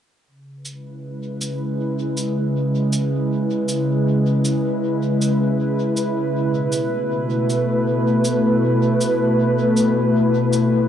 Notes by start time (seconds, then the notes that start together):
0.27 C#3
0.56 B4
0.65 G#3, cabasa
0.72 E4
1.41 cabasa
2.17 cabasa
2.93 cabasa
3.68 cabasa
4.45 cabasa
5.22 cabasa
5.97 cabasa
6.34 B2
6.67 A3
6.72 cabasa
7.50 cabasa
8.25 cabasa
9.01 cabasa
9.77 cabasa
10.53 cabasa